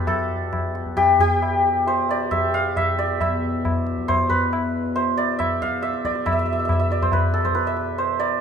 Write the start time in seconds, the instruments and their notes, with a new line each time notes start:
Already playing: harmonium E2 B2, santur F4 G4 B4 D5
0.07 santur A4, tabla na, tabla ge
0.53 tabla na, tabla ge
0.75 tabla te
0.86 tabla ge
0.97 santur G4, tabla na, tabla ge
1.19 santur G4, tabla ge
1.42 tabla na
1.87 santur C5, tabla tin
2.09 santur D5, tabla na
2.31 santur E5, tabla na, tabla ge
2.54 santur F5
2.76 santur E5, tabla na, tabla ge
2.99 santur D5, tabla te
3.21 harmonium E2 B2, santur E5, tabla na, tabla ge
3.65 tabla na, tabla ge
3.87 tabla te
3.98 tabla ge
4.08 santur C5, tabla na, tabla ge
4.29 santur B4, tabla ge
4.53 tabla na
4.96 santur C5, tabla tin
5.17 santur D5, tabla na
5.39 santur E5, tabla na, tabla ge
5.62 santur F5, tabla ge
5.82 santur E5, tabla te
5.94 tabla te
6.05 santur D5, tabla ke
6.15 tabla te
6.26 santur E5, tabla na, tabla ge
6.33 santur E5
6.39 santur E5
6.46 santur E5
6.53 santur E5
6.59 santur E5
6.65 santur E5
6.69 santur E5, tabla na, tabla ge
6.79 santur E5
6.91 santur D5, tabla te
7.02 santur C5, tabla ge
7.12 santur B4, tabla na, tabla ge
7.34 santur A4, tabla te
7.44 santur C5, tabla ge
7.55 santur B4, tabla te
7.67 santur E5
7.77 tabla te
7.98 santur C5, tabla tin
8.19 santur D5, tabla na